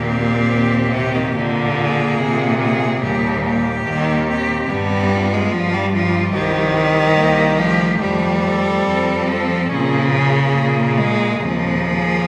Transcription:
Already playing: D#2 A#2
0.07 C4 G4
0.51 D#2
0.93 C3 G4
1.15 D#3
1.35 A#2 D3 A#3
1.77 G#4
2.20 A#2 C3
2.60 G#4
3.02 D#2 A#2 G3 G4
3.45 G4
3.86 D#2 D#3 A#3
4.28 C4 G4
4.69 G2 G3 B3
5.11 F4
5.34 G#3
5.52 G2 F3 G3
5.74 G3
5.92 F3 F4
6.34 C2 D#3 G4
6.76 G4
7.18 C2 A#3
7.59 F3 A3 G4
8.01 F2 G3
8.45 A4
8.85 F2 C4
9.27 F3 A4
9.69 A#2 C#3 C#4 G#4
10.12 A#3 G#4
10.55 A#2
10.98 G#3 G#4
11.41 D#2 F3 C4
11.85 A#3 G#4

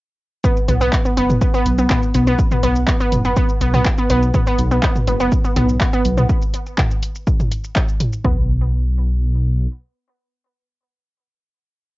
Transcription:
0.44 B3, kick, shaker
0.57 shaker
0.68 B1 B3, closed hi-hat, mid tom, shaker
0.81 B3, shaker
0.93 kick, clap, shaker
1.05 B3, shaker
1.17 F#1 B3, closed hi-hat, shaker
1.30 mid tom, shaker
1.41 B3, kick, shaker
1.54 B3, shaker
1.66 B1, closed hi-hat, shaker
1.79 B3, shaker
1.90 B3, kick, clap, mid tom, shaker
2.03 shaker
2.15 B1 B3, closed hi-hat, shaker
2.27 B3, shaker
2.39 kick, shaker
2.52 B3, mid tom, shaker
2.63 B1 B3, closed hi-hat, shaker
2.76 shaker
2.88 B3, kick, clap, shaker
3.00 B3, shaker
3.12 F#1, closed hi-hat, mid tom, shaker
3.25 B3, shaker
3.37 B3, kick, shaker
3.49 shaker
3.61 B1 B3, closed hi-hat, shaker
3.74 B3, mid tom, shaker
3.85 kick, clap, shaker
3.98 B3, shaker
4.10 B1 B3, closed hi-hat, shaker
4.23 shaker
4.34 B3, kick, mid tom, shaker
4.47 B3, shaker
4.58 B1, closed hi-hat, shaker
4.71 B3, shaker
4.83 B3, kick, clap, shaker
4.96 mid tom, shaker
5.07 F#1 B3, closed hi-hat, shaker
5.20 B3, shaker
5.32 kick, shaker
5.44 B3, shaker
5.56 B1 B3, closed hi-hat, mid tom, shaker
5.69 shaker
5.81 B3, kick, clap, shaker
5.93 B3, shaker
6.05 B1, closed hi-hat, shaker
6.18 B3, mid tom, shaker
6.29 kick, shaker
6.42 shaker
6.54 closed hi-hat, shaker
6.66 shaker
6.78 kick, clap, mid tom, shaker
6.91 shaker
7.03 closed hi-hat, shaker
7.15 shaker
7.27 kick, shaker
7.40 mid tom, shaker
7.51 closed hi-hat, shaker
7.64 shaker
7.76 kick, clap, shaker
7.88 shaker
8.00 closed hi-hat, mid tom, shaker
8.13 shaker
8.24 B1 B3, kick, floor tom

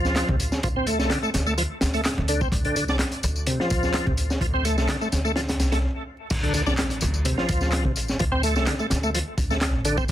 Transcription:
Already playing: D2 F3
0.05 snare, tambourine
0.16 snare, clap, closed hi-hat, tambourine
0.29 D2 C3, kick
0.40 closed hi-hat, tambourine
0.52 snare, tambourine
0.63 D2 F3, kick, closed hi-hat, tambourine
0.76 C4
0.87 A3, closed hi-hat, tambourine
0.99 C2 A3, snare, tambourine
1.10 D3, snare, clap, closed hi-hat, tambourine
1.23 A3, tambourine
1.34 D2, snare, closed hi-hat, tambourine
1.46 A3, tambourine
1.58 F3, closed hi-hat, tambourine
1.81 D2, snare, closed hi-hat, tambourine
1.94 A3, closed hi-hat, tambourine
2.05 snare, clap, closed hi-hat, tambourine
2.18 D2
2.28 D3, closed hi-hat, tambourine
2.41 C4, kick, tambourine
2.52 D2, kick, closed hi-hat, tambourine
2.65 D3, closed hi-hat
2.76 D3, closed hi-hat, tambourine
2.88 C2 D4, snare, tambourine
2.99 snare, clap, closed hi-hat, tambourine
3.12 closed hi-hat, tambourine
3.23 D2, closed hi-hat, tambourine
3.36 tambourine
3.47 C3, closed hi-hat, tambourine
3.60 F3, snare
3.70 D2, kick, closed hi-hat, tambourine
3.83 snare, tambourine
3.94 snare, clap, closed hi-hat, tambourine
4.07 D2 C3, kick
4.17 closed hi-hat, tambourine
4.30 snare, tambourine
4.41 D2 F3, kick, closed hi-hat, tambourine
4.54 C4
4.65 A3, closed hi-hat, tambourine
4.78 C2 A3, snare, tambourine
4.89 D3, snare, clap, closed hi-hat, tambourine
5.01 A3, tambourine
5.12 D2, snare, closed hi-hat, tambourine
5.25 A3, tambourine
5.36 F3, snare, closed hi-hat, tambourine
5.48 snare, closed hi-hat, tambourine
5.60 C2, snare, closed hi-hat, tambourine
5.72 A3, snare, closed hi-hat, tambourine
6.30 D2, kick, closed hi-hat, crash, tambourine, impact
6.43 D3, closed hi-hat
6.54 D3, closed hi-hat, tambourine
6.66 C2 D4, snare, tambourine
6.77 snare, clap, closed hi-hat, tambourine
6.90 closed hi-hat, tambourine
7.01 D2, closed hi-hat, tambourine
7.14 tambourine
7.25 C3, closed hi-hat, tambourine
7.38 F3, snare
7.49 D2, kick, closed hi-hat, tambourine
7.61 snare, tambourine
7.72 snare, clap, closed hi-hat, tambourine
7.85 A1 C3, kick
7.96 closed hi-hat, tambourine
8.08 snare, tambourine
8.19 D2 F3, kick, closed hi-hat, tambourine
8.32 C4
8.43 A3, closed hi-hat, tambourine
8.56 C2 A3, snare, tambourine
8.67 D3, snare, clap, closed hi-hat, tambourine
8.79 A3, tambourine
8.90 D2, snare, closed hi-hat, tambourine
9.03 A3, tambourine
9.14 F3, closed hi-hat, tambourine
9.38 D2, kick, closed hi-hat, tambourine
9.50 A3, snare, tambourine
9.61 snare, clap, closed hi-hat, tambourine
9.74 A1
9.85 D3, closed hi-hat, tambourine
9.97 C4, kick, tambourine
10.08 tambourine

